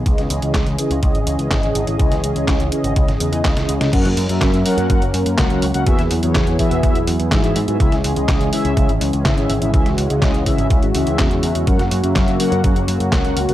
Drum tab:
CC |----------------|----------------|x---------------|----------------|
HH |xxxxxxxxxxxxxxxx|xxxxxxxxxxxxxxxx|xxoxxxoxxxoxxxox|xxoxxxoxxxoxxxox|
CP |----x-------x---|----x-------x---|----x-------x---|----x-------x---|
SD |-o--o-------o---|-o--o----o--oo-o|-o--o-------o---|-o--o-------o---|
BD |o---o---o---o---|o---o---o---o---|o---o---o---o---|o---o-o-o---o---|

CC |----------------|----------------|----------------|
HH |xxoxxxoxxxoxxxox|xxoxxxoxxxoxxxox|xxoxxxoxxxoxxxox|
CP |----x-------x---|----x-------x---|----x-------x---|
SD |-o--o-------o---|-o--o-------o---|-o--o-------o---|
BD |o---o---o---o---|o---o-o-o---o---|o---o---o---o---|